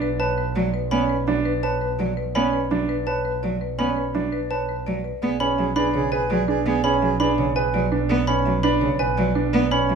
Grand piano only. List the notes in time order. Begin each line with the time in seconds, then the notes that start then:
0.20 B4
0.92 C#4
1.28 D4
1.63 B4
2.35 C#4
2.71 D4
3.07 B4
3.79 C#4
4.15 D4
4.51 B4
5.40 C#4
5.76 D4
6.12 B4
6.48 D4
6.84 C#4
7.20 D4
7.56 B4
7.92 D4
8.28 C#4
8.64 D4
8.99 B4
9.35 D4
9.71 C#4